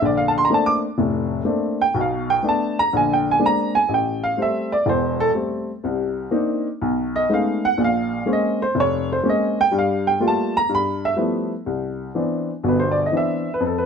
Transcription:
0.02 A#1 D3 D5
0.17 F5
0.28 A5
0.38 C6
0.45 A#5
0.50 A3 A#3 C4 D4
0.54 A5
0.66 D6
0.98 F1 A2
1.45 A3 A#3 C4 D4
1.81 G5
1.94 B1 B2
2.01 F5
2.30 G5
2.43 A3 B3 D4
2.49 A5
2.79 A#5
2.93 A#1 D3 G#5
3.13 G5
3.31 G#5
3.39 G#3 A#3 C4 D4
3.46 A#5
3.75 G#5
3.89 A1
3.94 G5
4.23 F5
4.37 G3 A3 C4
4.42 E5
4.72 D5
4.86 E1 E2 C5
5.20 A4
5.34 G3 A3 C4
5.84 C2 C3
6.31 A#3 C4 D4 D#4
6.82 B1
7.16 D#5
7.29 G#3 A3 B3 C#4 D#4
7.34 F5
7.65 F#5
7.78 A#1 A#2
7.84 F5
8.26 G#3 A#3 C4 C#4
8.33 D#5
8.62 C5
8.75 F1
8.80 C#5
9.12 C5
9.23 G#3 A#3 C4 C#4
9.29 D#5
9.61 G5
9.71 G2 G3
9.78 F5
10.07 G5
10.20 G3 A3 A#3 F4
10.28 A5
10.57 A#5
10.69 G2
10.75 B5
11.05 E5
11.16 F3 G3 A3 B3 E4
11.66 C2
12.15 E3 B3 C4 D4
12.63 G1 B2
12.68 B4
12.80 C5
12.91 D5
13.06 D#5
13.12 E3 B3 C4 D4
13.17 E5
13.54 B4
13.60 F2
13.66 A4
13.78 B4

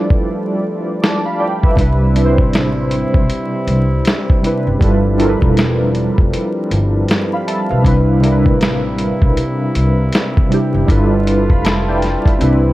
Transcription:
Already playing: F3 G3 A3 D4 E4 F4 G4 A4 B4 C5 D5
0.10 kick
1.02 A5 D6, snare
1.25 F5 B5
1.40 D5 G5
1.63 B4 E5, kick
1.75 C2 C3 G3 C4 D4 E4, kick, closed hi-hat
1.80 B4
2.13 C3 G3 D4 E4, closed hi-hat
2.19 B4
2.25 C5
2.38 A1, kick
2.53 snare, closed hi-hat
2.91 closed hi-hat
3.14 B1, kick
3.30 closed hi-hat
3.67 C2, closed hi-hat
4.05 snare, closed hi-hat
4.30 kick
4.41 C3 G3 D4 E4, closed hi-hat
4.46 B4
4.67 F#1
4.79 G1 F3 G3 D4 E4 F4, kick, closed hi-hat
4.83 A4 B4
5.17 G3 D4 E4 F4, closed hi-hat
5.21 A4 A#4
5.29 B4
5.42 E1, kick
5.57 snare, closed hi-hat
5.95 closed hi-hat
6.18 F1, kick
6.33 closed hi-hat
6.71 G1, closed hi-hat
7.08 snare, closed hi-hat
7.33 F5 B5
7.47 E5 A5, closed hi-hat
7.70 B1 B4 F5
7.82 C2 C3 G3 D4 E4, kick, closed hi-hat
7.87 B4
8.20 C3 G3 D4 E4, closed hi-hat
8.25 A#4
8.32 B4
8.46 A1, kick
8.61 snare, closed hi-hat
8.98 closed hi-hat
9.22 B1, kick
9.37 closed hi-hat
9.75 C2, closed hi-hat
10.12 snare, closed hi-hat
10.37 kick
10.48 C3 G3 D4, closed hi-hat
10.53 E4 G4
10.74 F#1
10.86 G1 G3 D4 E4 F4, kick, closed hi-hat
10.91 A4 B4
11.27 closed hi-hat
11.50 F1 F5 B5, kick
11.65 E5 A5, snare, closed hi-hat
11.88 D5 G5
12.02 snare, closed hi-hat
12.26 G1 B4 E5, kick, closed hi-hat
12.38 C2 E3 G3 C4 D4 E4, closed hi-hat
12.44 B4

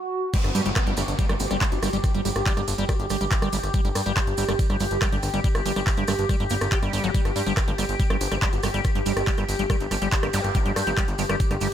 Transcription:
Already playing: F#4
0.34 G3 G4, kick, closed hi-hat, crash, downlifter, maracas
0.44 G1, cross-stick, closed hi-hat, maracas
0.55 G2 G3, open hi-hat, maracas
0.66 G1 G3, closed hi-hat, maracas
0.76 kick, cross-stick, clap, closed hi-hat, maracas
0.87 G1 G3, closed hi-hat, maracas
0.97 G1 G3, cross-stick, open hi-hat, maracas
1.08 G1, closed hi-hat, maracas
1.19 G3, kick, closed hi-hat, maracas
1.29 G1 G3, cross-stick, closed hi-hat, maracas
1.40 G1 C4, open hi-hat, maracas
1.51 G1 G3 C4, cross-stick, closed hi-hat, maracas
1.61 G3, kick, clap, closed hi-hat, maracas
1.72 G1 F#4, closed hi-hat, maracas
1.83 G1 G3 F#4, cross-stick, open hi-hat, maracas
1.93 G1 G3, closed hi-hat, maracas
2.04 kick, cross-stick, closed hi-hat, maracas
2.14 G1 G3, closed hi-hat, maracas
2.25 G1 G3 G4, open hi-hat, maracas
2.35 G1, cross-stick, closed hi-hat, maracas
2.46 G3, kick, clap, open hi-hat, maracas
2.57 G1 G3, cross-stick, closed hi-hat, maracas
2.68 G1, open hi-hat, maracas
2.78 G1 G3, closed hi-hat
2.89 G3 G4, kick, cross-stick, closed hi-hat, maracas
2.99 G1 G4, closed hi-hat, maracas
3.10 G1 G3, cross-stick, open hi-hat, maracas
3.21 G1 G3, closed hi-hat, maracas
3.31 kick, clap, closed hi-hat, maracas
3.42 G1 G3, cross-stick, closed hi-hat, maracas
3.52 G1 G3, open hi-hat, maracas
3.63 G1, cross-stick, closed hi-hat, maracas
3.74 G3, kick, closed hi-hat, maracas
3.85 G1 G3, closed hi-hat, maracas
3.95 G2, cross-stick, open hi-hat, maracas
4.06 G1 G3, closed hi-hat, maracas
4.17 G3, kick, cross-stick, clap, closed hi-hat, maracas
4.27 G1, closed hi-hat, maracas
4.37 G1 G3, open hi-hat, maracas
4.49 G1 G3, cross-stick, closed hi-hat, maracas
4.59 kick, closed hi-hat, maracas
4.70 G1 G3, cross-stick, closed hi-hat, maracas
4.80 G1 G3, open hi-hat, maracas
4.90 G1, closed hi-hat, maracas
5.01 G3, kick, cross-stick, clap, closed hi-hat, maracas
5.12 G1 G3, closed hi-hat, maracas
5.23 G1, cross-stick, open hi-hat, maracas
5.34 G1 G3, closed hi-hat, maracas
5.44 G3, kick, closed hi-hat, maracas
5.55 G1, cross-stick, closed hi-hat, maracas
5.66 G1 G3, open hi-hat, maracas
5.76 G1 G3, cross-stick, closed hi-hat, maracas
5.87 kick, clap, open hi-hat, maracas
5.97 G1 G3, closed hi-hat, maracas
6.08 G1 G3, cross-stick, open hi-hat, maracas
6.19 G1, closed hi-hat, maracas
6.29 G3, kick, cross-stick, closed hi-hat, maracas
6.40 G1 G3, closed hi-hat, maracas
6.50 G1 A#3, open hi-hat, maracas
6.61 G1, cross-stick, closed hi-hat, maracas
6.71 G4, kick, clap, closed hi-hat, maracas
6.82 G1 G3, cross-stick, closed hi-hat, maracas
6.93 G1 G3, open hi-hat, maracas
7.03 G1 F#3, closed hi-hat, maracas
7.14 G3, kick, closed hi-hat, maracas
7.25 G1, cross-stick, closed hi-hat, maracas
7.36 G2 G3, open hi-hat, maracas
7.46 G1 G3, closed hi-hat, maracas
7.57 kick, cross-stick, clap, closed hi-hat, maracas
7.67 G1 G3, closed hi-hat, maracas
7.78 G1 G3, cross-stick, open hi-hat, maracas
7.89 G1, closed hi-hat, maracas
8.00 G3, kick, closed hi-hat, maracas
8.10 G1 G3, cross-stick, closed hi-hat, maracas
8.21 G1 C4, open hi-hat, maracas
8.32 G1 G3 C4, cross-stick, closed hi-hat, maracas
8.42 G3, kick, clap, closed hi-hat, maracas
8.53 G1 F#4, closed hi-hat, maracas
8.63 G1 G3 F#4, cross-stick, open hi-hat, maracas
8.74 G1 G3, closed hi-hat, maracas
8.84 kick, cross-stick, closed hi-hat, maracas
8.95 G1 G3, closed hi-hat, maracas
9.06 G1 G3 D4, open hi-hat, maracas
9.17 G1 D4, cross-stick, closed hi-hat, maracas
9.27 G3, kick, clap, open hi-hat, maracas
9.37 G1 G3, cross-stick, closed hi-hat, maracas
9.49 G1, open hi-hat, maracas
9.59 G1 G3, closed hi-hat, maracas
9.70 G3, kick, cross-stick, closed hi-hat, maracas
9.80 G1, closed hi-hat, maracas
9.91 G1 G3, cross-stick, open hi-hat, maracas
10.02 G1 G3, closed hi-hat, maracas
10.12 kick, clap, closed hi-hat, maracas
10.23 G1 G3, cross-stick, closed hi-hat, maracas
10.33 G1 G3, open hi-hat, zap, maracas
10.44 G1, cross-stick, closed hi-hat, maracas
10.55 G3, kick, closed hi-hat, maracas
10.66 G1 G3, closed hi-hat, maracas
10.76 G2, cross-stick, open hi-hat, maracas
10.87 G1 G3, closed hi-hat, maracas
10.97 G3, kick, cross-stick, clap, closed hi-hat, maracas
11.08 G1, closed hi-hat, maracas
11.18 G1 G3, open hi-hat, maracas
11.29 G1 G3, cross-stick, closed hi-hat, maracas
11.40 kick, closed hi-hat, maracas
11.51 G1 G3, cross-stick, closed hi-hat, maracas
11.61 G1 G3, open hi-hat, maracas

